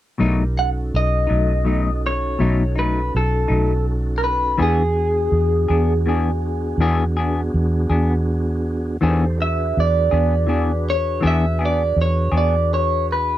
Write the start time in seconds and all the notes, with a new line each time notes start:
0.18 B1 B2 F#3 A3 D#4
0.22 D4 E4 G4 A#4
0.58 C#4 D#4 F#4 A4 F#5
0.94 B1 D#5
1.27 B1 F#3 A3 D#4
1.65 B2 F#3 A3 D#4
2.06 C#5
2.39 B1 B2 F#3 A3 D#4
2.76 F#3 A3 D#4 B4
3.15 B1 A4
3.48 B1 F#3 A3 D#4
4.18 A#4
4.24 B4
4.58 E2 E3 B3 D4 F#4 G#4
4.62 G#4
5.32 E2
5.68 E2 B3 D4 G#4
6.06 E3 B3 D4 G#4
6.78 E2 E3 B3 D4 G#4
7.17 B3 D4 G#4
7.54 E2
7.90 E2 B3 D4 G#4
9.01 E2 E3 B3 D4 D#4 G4 G#4 A4 C5
9.38 D4 F#4 G#4 B4
9.42 E5
9.77 E2 D5
10.11 E2 B3 D4 G#4
10.47 E3 B3 D4 G#4
10.90 C#5
11.21 E2 E3 B3 D4 G#4
11.27 E5
11.59 B3 D4 G#4
11.66 D5
11.96 E2
12.02 C#5
12.32 E2 B3 D4 G#4
12.38 D5
12.74 C#5
13.12 B4